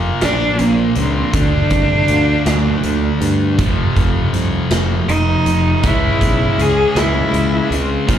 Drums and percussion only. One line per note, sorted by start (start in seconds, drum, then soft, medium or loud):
0.21 snare loud
0.21 closed hi-hat medium
0.59 closed hi-hat medium
0.95 closed hi-hat medium
1.33 kick loud
1.33 closed hi-hat medium
1.70 kick medium
1.70 closed hi-hat medium
2.08 closed hi-hat medium
2.46 snare loud
2.46 closed hi-hat medium
2.83 closed hi-hat medium
3.21 closed hi-hat medium
3.58 kick loud
3.58 closed hi-hat medium
3.96 kick medium
3.96 closed hi-hat medium
4.34 closed hi-hat medium
4.71 snare loud
4.71 closed hi-hat loud
5.09 closed hi-hat medium
5.46 closed hi-hat medium
5.83 kick loud
5.83 closed hi-hat loud
6.21 kick medium
6.21 closed hi-hat medium
6.59 closed hi-hat medium
6.96 snare loud
6.96 closed hi-hat loud
7.34 closed hi-hat medium
7.72 closed hi-hat medium
8.09 kick loud
8.09 closed hi-hat loud